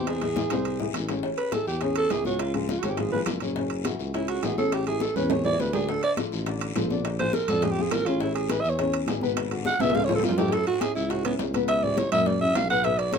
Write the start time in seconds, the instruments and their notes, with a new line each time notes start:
Already playing: tuba E2, grand piano C3 C4 C5, alto saxophone G4
0.07 alto saxophone G#4, high bongo, high conga, high timbale, long guiro
0.21 grand piano E3 E4 G#4, high bongo, high conga, high timbale
0.36 grand piano E3 E4 G#4, low bongo, high conga, short guiro
0.50 tuba C2, grand piano C3 C4 C5, low bongo, high conga, high timbale, short guiro
0.65 high conga, high timbale, long guiro
0.80 grand piano E3 E4 G#4, low bongo, high conga
0.94 tuba A1, low bongo, high conga, high timbale, short guiro
1.09 grand piano C#3 C#4 C#5, low bongo, high conga, high timbale, short guiro
1.23 grand piano C#3 C#4 C#5, high bongo, high conga, long guiro
1.38 alto saxophone B4, high conga, high timbale
1.52 grand piano E3 E4 G#4, alto saxophone A4, high bongo, high conga, high timbale, short guiro
1.66 tuba E2, alto saxophone G4, high bongo, high conga, short guiro
1.81 grand piano C#3 C#4 C#5, alto saxophone G#4, high bongo, high conga, high timbale, long guiro
1.96 alto saxophone A4, high conga, high timbale
2.10 tuba C#2, grand piano E3 E4 G#4, alto saxophone G#4, high bongo, low bongo, high conga, high timbale, low timbale, short guiro
2.25 grand piano C#3 C#4 C#5, alto saxophone F#4, high bongo, high conga, short guiro
2.39 alto saxophone F4, high bongo, high conga, high timbale, long guiro
2.54 grand piano F3 F4 G#4, alto saxophone D4, high conga, high timbale
2.69 alto saxophone F4, high bongo, high conga, short guiro
2.79 tuba G#1, alto saxophone F#4, high bongo, high timbale
2.83 grand piano C#3 C#4 C#5, high conga, low conga, short guiro
2.89 alto saxophone G4
2.97 grand piano F3 F4 G#4, alto saxophone G#4, high bongo, high conga, high timbale, long guiro
3.12 grand piano F3 F4 G#4, alto saxophone B4
3.26 tuba F#1, high bongo, low bongo, high conga, high timbale, low timbale, short guiro
3.40 grand piano C#3 C#4 C#5, high bongo, high conga, high timbale, short guiro
3.56 grand piano C#3 C#4 C#5, high bongo, high conga, long guiro
3.70 high conga, high timbale
3.85 grand piano E3 E4 F#4, high bongo, high conga, high timbale, short guiro
3.99 tuba C#2, high bongo, high conga, short guiro
4.14 grand piano C#3 C#4 C#5, alto saxophone E4, high bongo, high conga, high timbale, long guiro
4.28 alto saxophone F#4, high conga, high timbale
4.42 tuba A1, grand piano E3 E4 F#4, alto saxophone G#4, high bongo, low bongo, high conga, high timbale, low timbale, short guiro
4.58 grand piano C#3 C#4 C#5, alto saxophone A4, high bongo, high conga, short guiro
4.72 alto saxophone G4, high bongo, high conga, high timbale, long guiro
4.87 grand piano E3 E4 G4, alto saxophone G#4, high conga, high timbale
5.00 alto saxophone A4, high bongo, high conga, short guiro
5.16 tuba E2, grand piano C#3 C#4 C#5, alto saxophone B4, high bongo, high conga, low conga, high timbale, short guiro
5.30 grand piano E3 E4 G4, alto saxophone C#5, high bongo, high conga, low conga, high timbale, long guiro
5.45 grand piano E3 E4 G4, alto saxophone D5, high conga, low timbale
5.59 tuba D2, alto saxophone B4, high bongo, low bongo, high conga, short guiro
5.73 grand piano D3 D4 D5, alto saxophone G#4, high bongo, low timbale, short guiro
5.88 grand piano D3 D4 D5, alto saxophone A4, high bongo, high conga, long guiro
6.03 alto saxophone D5, high conga, high timbale
6.17 grand piano F3 F4 A4, high bongo, high conga, high timbale, short guiro
6.32 tuba A1, high bongo, high conga, short guiro
6.46 grand piano D3 D4 D5, high bongo, high conga, high timbale, long guiro
6.61 high conga, high timbale
6.75 tuba A#1, grand piano F3 F4 A4, high bongo, low bongo, high conga, high timbale, low timbale, short guiro
6.90 grand piano D3 D4 D5, high bongo, high conga, short guiro
7.05 high bongo, high timbale, long guiro
7.19 grand piano F3 F4 G#4, alto saxophone C5, high conga, high timbale
7.33 alto saxophone A#4, high bongo, high conga, short guiro
7.48 tuba F2, grand piano D3 D4 D5, alto saxophone A4, high bongo, high conga, low conga, high timbale, short guiro
7.62 grand piano F3 F4 G#4, alto saxophone G#4, high bongo, high conga, low conga, high timbale, long guiro
7.72 alto saxophone G4
7.78 grand piano F3 F4 G#4, high conga
7.82 alto saxophone G#4
7.91 tuba A1, alto saxophone A#4, high bongo, low bongo, high conga, high timbale, low timbale, short guiro
8.06 grand piano C#3 C#4 C#5, alto saxophone F4, high bongo, high conga, high timbale, short guiro
8.20 grand piano C#3 C#4 C#5, alto saxophone E4, high bongo, high conga, long guiro
8.35 alto saxophone G#4, high conga, high timbale
8.49 grand piano E3 E4 G#4, alto saxophone B4, high bongo, high conga, high timbale, short guiro
8.60 tuba E2, alto saxophone E5, high conga
8.64 high bongo, short guiro
8.69 alto saxophone C#5
8.78 grand piano C#3 C#4 C#5, high bongo, high conga, high timbale, long guiro
8.92 high conga, high timbale
9.06 tuba G#1, grand piano E3 E4 G#4, high bongo, low bongo, high conga, high timbale, low timbale, short guiro
9.21 grand piano B2 B3 B4, high bongo, high conga, short guiro
9.36 high bongo, high conga, high timbale, long guiro
9.50 grand piano D3 D4 F#4, high conga, high timbale
9.65 alto saxophone F#5, high bongo, high conga, short guiro
9.80 tuba C#2, grand piano B2 B3 B4, alto saxophone E5, high bongo, high conga, low conga, high timbale, short guiro
9.90 high conga, high timbale
9.95 grand piano F3 F4 A4, alto saxophone F5, high bongo, long guiro
10.00 high timbale
10.05 alto saxophone C#5, high conga
10.09 grand piano F3 F4 A4, low bongo, low timbale
10.15 alto saxophone A4
10.19 high conga, low timbale
10.23 tuba F#2, alto saxophone F4, low bongo, short guiro
10.29 low timbale
10.38 grand piano A2 A3 A4, alto saxophone G4, low bongo, low timbale, short guiro
10.48 low timbale
10.52 grand piano A2 A3 A4, alto saxophone A4, high bongo, high conga, high timbale, long guiro
10.67 alto saxophone F#4, high conga, high timbale
10.81 grand piano C#3 C#4 E4, alto saxophone G#4, high bongo, high conga, high timbale, short guiro
10.95 tuba C#2, alto saxophone E4, high bongo, high conga, short guiro
11.10 grand piano C#3 C#4 E4, alto saxophone F#4, high bongo, high conga, high timbale, long guiro
11.25 grand piano C#3 C#4 E4, alto saxophone B3, high bongo, high conga, high timbale
11.39 tuba C#2, high bongo, low bongo, high conga, low timbale, short guiro
11.54 grand piano B2 B3 B4, high bongo, high conga, high timbale, short guiro
11.68 alto saxophone E5, high bongo, high timbale, long guiro
11.83 grand piano E3 E4 G4, alto saxophone D5, high bongo, high conga
11.97 grand piano E3 E4 G4, alto saxophone C#5, high bongo, high conga, high timbale, short guiro
12.12 tuba F#2, grand piano A#2 A#3 A#4, alto saxophone E5, high conga, low conga, high timbale, short guiro
12.26 alto saxophone D5, high bongo, high conga, low conga, long guiro
12.41 grand piano C#3 C#4 E4, alto saxophone E5, high bongo, high conga
12.55 tuba B1, alto saxophone F5, high bongo, low bongo, high conga, high timbale, low timbale, short guiro
12.70 grand piano B2 B3 B4, alto saxophone F#5, high bongo, high conga, high timbale, short guiro
12.84 grand piano B2 B3 B4, alto saxophone E5, high bongo, high conga, high timbale, long guiro
12.99 alto saxophone D5, high conga, high timbale
13.12 grand piano D3 D4 F#4, alto saxophone C#5, high bongo, high conga, high timbale, short guiro